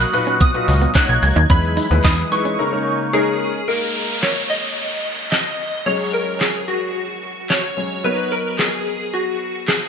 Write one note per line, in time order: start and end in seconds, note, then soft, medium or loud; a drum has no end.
0.00 2.56 F#3 medium
0.00 1.33 F#4 medium
0.00 0.13 F#6 loud
0.00 shaker medium
0.13 0.46 A#2 medium
0.13 0.46 D#4 medium
0.13 0.46 F#4 medium
0.13 0.46 B4 medium
0.13 0.42 F#6 medium
0.13 muted clean electric guitar stroke soft
0.13 open hi-hat medium
0.13 shaker medium
0.27 0.37 C#4 medium
0.27 shaker medium
0.41 0.50 B3 medium
0.41 0.92 D#6 loud
0.41 kick loud
0.41 closed hi-hat medium
0.41 shaker medium
0.54 0.87 A#2 medium
0.54 0.87 D#4 medium
0.54 0.87 F#4 medium
0.54 0.87 B4 medium
0.54 muted clean electric guitar stroke soft
0.54 shaker medium
0.68 0.88 C#2 loud
0.68 open hi-hat medium
0.68 shaker medium
0.82 0.91 B3 medium
0.82 shaker medium
0.95 1.38 A#3 medium
0.95 1.05 C#4 medium
0.95 1.38 D#4 medium
0.95 1.39 F#4 medium
0.95 1.39 C#5 medium
0.95 1.08 F#6 loud
0.95 kick loud
0.95 snare medium
0.95 clap loud
0.95 closed hi-hat medium
0.95 shaker medium
1.09 1.19 B1 medium
1.09 1.22 G#6 loud
1.09 muted clean electric guitar stroke soft
1.09 shaker soft
1.23 1.32 C#2 loud
1.23 1.48 G#6 loud
1.23 open hi-hat medium
1.23 shaker medium
1.36 1.46 D#2 medium
1.36 1.46 D#4 medium
1.36 shaker medium
1.50 1.79 E2 loud
1.50 2.58 E3 medium
1.50 1.82 G#3 medium
1.50 3.66 G#3 medium
1.50 1.59 C#4 medium
1.50 1.82 D#4 medium
1.50 1.82 E4 medium
1.50 1.82 B4 medium
1.50 2.06 B5 loud
1.50 kick loud
1.50 closed hi-hat medium
1.50 shaker medium
1.64 shaker medium
1.77 1.87 D#4 medium
1.77 open hi-hat medium
1.77 shaker medium
1.91 2.01 D#2 medium
1.91 2.23 G#3 medium
1.91 2.23 D#4 medium
1.91 2.23 E4 medium
1.91 2.23 B4 medium
1.91 muted clean electric guitar stroke soft
1.91 shaker medium
2.04 2.24 E2 loud
2.04 2.14 D#4 medium
2.04 2.33 D#6 medium
2.04 kick loud
2.04 snare medium
2.04 clap loud
2.04 closed hi-hat medium
2.04 shaker medium
2.18 shaker medium
2.31 2.57 G#3 medium
2.31 2.58 D#4 medium
2.31 2.59 E4 medium
2.31 2.59 B4 medium
2.31 3.37 C#6 medium
2.31 muted clean electric guitar stroke soft
2.31 open hi-hat medium
2.31 shaker medium
2.45 2.55 C#4 medium
2.45 shaker medium
2.59 3.67 C#3 medium
2.59 2.70 G#3 medium
2.59 3.67 A#3 medium
2.59 2.70 C#4 medium
2.59 3.67 D#4 medium
2.59 2.70 D#4 medium
2.59 2.70 A#4 medium
2.72 3.05 G#3 medium
2.72 3.05 C#4 medium
2.72 3.05 D#4 medium
2.72 3.05 A#4 medium
3.13 3.57 G#3 medium
3.13 3.57 C#4 medium
3.13 3.57 D#4 medium
3.13 3.70 G#4 loud
3.13 3.57 A#4 loud
3.68 5.82 G#3 medium
3.68 5.82 A#3 medium
3.68 5.82 D#4 medium
3.68 4.19 A#4 medium
3.68 5.82 A#4 medium
3.68 downlifter medium
4.22 4.51 C#5 medium
4.22 snare medium
4.22 clap medium
4.50 5.30 D#5 loud
5.32 5.88 D#5 loud
5.32 snare medium
5.32 clap loud
5.86 7.73 F#3 medium
5.86 7.73 G#3 medium
5.86 7.73 C#4 medium
5.86 7.74 G#4 medium
5.86 6.14 C#5 loud
6.13 6.42 A#4 medium
6.41 6.69 G#4 medium
6.41 snare medium
6.41 clap loud
6.68 7.52 F#4 medium
7.50 8.06 C#5 loud
7.50 snare medium
7.50 clap loud
7.77 8.02 F#3 soft
7.77 8.04 G#3 soft
7.77 8.04 C#4 soft
7.77 8.05 G#4 medium
8.04 9.88 F#3 medium
8.04 9.88 B3 medium
8.04 9.88 D#4 medium
8.04 9.88 A#4 medium
8.04 8.32 B4 loud
8.32 8.57 A#4 medium
8.59 9.15 G#4 medium
8.59 snare medium
8.59 clap loud
9.14 9.64 F#4 medium
9.68 9.88 G#4 medium
9.68 snare medium
9.68 clap loud